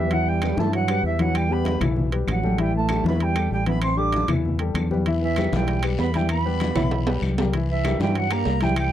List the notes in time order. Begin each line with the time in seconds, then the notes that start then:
Already playing: E2 E3 E5
0.10 E3 F#3 E4 E5 F#5, high conga, high timbale
0.26 G3 G5, high conga
0.42 G3 G4 B4, high conga, high timbale, claves
0.57 G2 E3 A3 E4 E5 A5, high conga
0.73 F#3 F#5, high conga, high timbale
0.88 G3 G4 B4, high conga, high timbale, claves
1.03 E2 E3 E5, high conga
1.19 E3 F#3 E4 E5 F#5, high conga, high timbale
1.35 G3 G5, high conga, high timbale, claves
1.50 G3 B3 G4 B4 B5, high conga
1.65 high conga, high timbale
1.80 B1 E3 E4 E5, high conga, low conga, high timbale, claves
1.96 high conga, low conga
2.12 G3 G4 B4, high conga, high timbale
2.27 A1 F#3 F#5, high conga, high timbale, claves
2.43 G3 G4 A4, high conga
2.58 E3 G3 E4 E5 G5, high conga, high timbale
2.75 A3 A5, high conga
2.89 G3 G4 A4, high conga, high timbale, claves
3.04 E2 E3 B3 E4 E5 B5, high conga
3.20 G3 G5, high conga, high timbale
3.36 G3 G4 A4, high conga, high timbale, claves
3.51 A1 G3 G5, high conga
3.66 E3 B3 E4 E5 B5, high conga, high timbale
3.82 C4 C6, high conga, high timbale, claves
3.97 G3 D4 G4 A4 D6, high conga
4.12 high conga, high timbale
4.28 E2 E3 E4 E5, high conga, low conga, high timbale, claves
4.45 high conga, low conga
4.59 G3 G4 A4, high conga, high timbale
4.74 E2, high conga, high timbale, claves
4.91 G3 G4 B4, high conga
5.06 E3 E4 E5, high timbale, long guiro
5.22 E3 E5, high conga
5.36 G3 G4 B4, high conga, high timbale, short guiro, claves
5.52 B1 E3 G3 E4 E5 G5, high conga, short guiro
5.67 high conga, high timbale, long guiro
5.83 G3 G4 B4, high conga, high timbale, claves
5.99 E2 B3 B5, high conga, low timbale, short guiro
6.14 E3 G3 E4 E5 G5, high conga, high timbale, short guiro
6.29 B3 B5, high conga, high timbale, long guiro, claves
6.45 G3 G4 B4, high conga
6.60 high conga, high timbale, short guiro
6.76 B1 E3 E4 E5, high conga, low conga, high timbale, short guiro, claves
6.91 high conga, low timbale, long guiro
7.07 G3 G4 B4, high conga, low timbale
7.22 C2, high conga, short guiro, claves
7.38 G3 G4 A#4, high conga, low timbale, short guiro
7.54 E3 E4 E5, high conga, high timbale, long guiro
7.69 E3 E5, high conga
7.85 G3 G4 A#4, high conga, high timbale, short guiro, claves
7.99 G2 E3 G3 E4 E5 G5, high conga, short guiro
8.15 F#3 F#5, high conga, high timbale, long guiro
8.31 G3 A#3 G4 A#4 A#5, high conga, high timbale, claves
8.45 C2, high conga, low timbale, short guiro
8.61 E3 G3 E4 E5 G5, high conga, high timbale, short guiro
8.76 G3 G5, high conga, high timbale, long guiro, claves